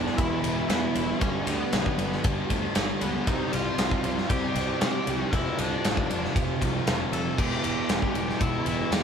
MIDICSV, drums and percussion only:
0, 0, Header, 1, 2, 480
1, 0, Start_track
1, 0, Tempo, 513699
1, 1140, Time_signature, 4, 2, 24, 8
1, 8439, End_track
2, 0, Start_track
2, 0, Title_t, "Drums"
2, 60, Note_on_c, 9, 38, 34
2, 154, Note_off_c, 9, 38, 0
2, 170, Note_on_c, 9, 51, 95
2, 171, Note_on_c, 9, 36, 109
2, 263, Note_off_c, 9, 51, 0
2, 265, Note_off_c, 9, 36, 0
2, 411, Note_on_c, 9, 51, 76
2, 504, Note_off_c, 9, 51, 0
2, 650, Note_on_c, 9, 51, 99
2, 655, Note_on_c, 9, 38, 107
2, 743, Note_off_c, 9, 51, 0
2, 749, Note_off_c, 9, 38, 0
2, 892, Note_on_c, 9, 51, 74
2, 985, Note_off_c, 9, 51, 0
2, 1132, Note_on_c, 9, 51, 95
2, 1135, Note_on_c, 9, 36, 109
2, 1225, Note_off_c, 9, 51, 0
2, 1228, Note_off_c, 9, 36, 0
2, 1373, Note_on_c, 9, 51, 78
2, 1467, Note_off_c, 9, 51, 0
2, 1612, Note_on_c, 9, 51, 103
2, 1618, Note_on_c, 9, 38, 118
2, 1706, Note_off_c, 9, 51, 0
2, 1712, Note_off_c, 9, 38, 0
2, 1738, Note_on_c, 9, 36, 92
2, 1832, Note_off_c, 9, 36, 0
2, 1856, Note_on_c, 9, 51, 73
2, 1949, Note_off_c, 9, 51, 0
2, 1984, Note_on_c, 9, 38, 34
2, 2078, Note_off_c, 9, 38, 0
2, 2094, Note_on_c, 9, 51, 106
2, 2099, Note_on_c, 9, 36, 119
2, 2187, Note_off_c, 9, 51, 0
2, 2193, Note_off_c, 9, 36, 0
2, 2338, Note_on_c, 9, 51, 78
2, 2339, Note_on_c, 9, 36, 82
2, 2431, Note_off_c, 9, 51, 0
2, 2432, Note_off_c, 9, 36, 0
2, 2571, Note_on_c, 9, 51, 100
2, 2577, Note_on_c, 9, 38, 116
2, 2665, Note_off_c, 9, 51, 0
2, 2670, Note_off_c, 9, 38, 0
2, 2816, Note_on_c, 9, 51, 74
2, 2909, Note_off_c, 9, 51, 0
2, 3057, Note_on_c, 9, 51, 92
2, 3059, Note_on_c, 9, 36, 102
2, 3150, Note_off_c, 9, 51, 0
2, 3153, Note_off_c, 9, 36, 0
2, 3298, Note_on_c, 9, 51, 70
2, 3391, Note_off_c, 9, 51, 0
2, 3535, Note_on_c, 9, 51, 100
2, 3541, Note_on_c, 9, 38, 104
2, 3628, Note_off_c, 9, 51, 0
2, 3634, Note_off_c, 9, 38, 0
2, 3658, Note_on_c, 9, 36, 92
2, 3751, Note_off_c, 9, 36, 0
2, 3773, Note_on_c, 9, 51, 64
2, 3866, Note_off_c, 9, 51, 0
2, 3903, Note_on_c, 9, 38, 34
2, 3996, Note_off_c, 9, 38, 0
2, 4015, Note_on_c, 9, 51, 100
2, 4018, Note_on_c, 9, 36, 107
2, 4108, Note_off_c, 9, 51, 0
2, 4111, Note_off_c, 9, 36, 0
2, 4256, Note_on_c, 9, 51, 73
2, 4350, Note_off_c, 9, 51, 0
2, 4496, Note_on_c, 9, 51, 93
2, 4501, Note_on_c, 9, 38, 118
2, 4589, Note_off_c, 9, 51, 0
2, 4595, Note_off_c, 9, 38, 0
2, 4738, Note_on_c, 9, 51, 78
2, 4831, Note_off_c, 9, 51, 0
2, 4979, Note_on_c, 9, 36, 109
2, 4980, Note_on_c, 9, 51, 97
2, 5072, Note_off_c, 9, 36, 0
2, 5073, Note_off_c, 9, 51, 0
2, 5219, Note_on_c, 9, 51, 79
2, 5312, Note_off_c, 9, 51, 0
2, 5462, Note_on_c, 9, 51, 107
2, 5467, Note_on_c, 9, 38, 107
2, 5555, Note_off_c, 9, 51, 0
2, 5561, Note_off_c, 9, 38, 0
2, 5581, Note_on_c, 9, 36, 93
2, 5674, Note_off_c, 9, 36, 0
2, 5705, Note_on_c, 9, 51, 76
2, 5798, Note_off_c, 9, 51, 0
2, 5833, Note_on_c, 9, 38, 32
2, 5927, Note_off_c, 9, 38, 0
2, 5942, Note_on_c, 9, 36, 116
2, 5945, Note_on_c, 9, 51, 103
2, 6035, Note_off_c, 9, 36, 0
2, 6038, Note_off_c, 9, 51, 0
2, 6181, Note_on_c, 9, 36, 80
2, 6185, Note_on_c, 9, 51, 76
2, 6275, Note_off_c, 9, 36, 0
2, 6279, Note_off_c, 9, 51, 0
2, 6420, Note_on_c, 9, 51, 99
2, 6426, Note_on_c, 9, 38, 119
2, 6513, Note_off_c, 9, 51, 0
2, 6519, Note_off_c, 9, 38, 0
2, 6663, Note_on_c, 9, 51, 78
2, 6756, Note_off_c, 9, 51, 0
2, 6900, Note_on_c, 9, 36, 105
2, 6902, Note_on_c, 9, 49, 96
2, 6993, Note_off_c, 9, 36, 0
2, 6996, Note_off_c, 9, 49, 0
2, 7138, Note_on_c, 9, 51, 70
2, 7232, Note_off_c, 9, 51, 0
2, 7374, Note_on_c, 9, 51, 99
2, 7380, Note_on_c, 9, 38, 115
2, 7467, Note_off_c, 9, 51, 0
2, 7473, Note_off_c, 9, 38, 0
2, 7497, Note_on_c, 9, 36, 90
2, 7591, Note_off_c, 9, 36, 0
2, 7617, Note_on_c, 9, 51, 72
2, 7711, Note_off_c, 9, 51, 0
2, 7747, Note_on_c, 9, 38, 35
2, 7841, Note_off_c, 9, 38, 0
2, 7854, Note_on_c, 9, 51, 96
2, 7857, Note_on_c, 9, 36, 112
2, 7948, Note_off_c, 9, 51, 0
2, 7950, Note_off_c, 9, 36, 0
2, 8092, Note_on_c, 9, 51, 66
2, 8185, Note_off_c, 9, 51, 0
2, 8335, Note_on_c, 9, 51, 94
2, 8341, Note_on_c, 9, 38, 117
2, 8428, Note_off_c, 9, 51, 0
2, 8434, Note_off_c, 9, 38, 0
2, 8439, End_track
0, 0, End_of_file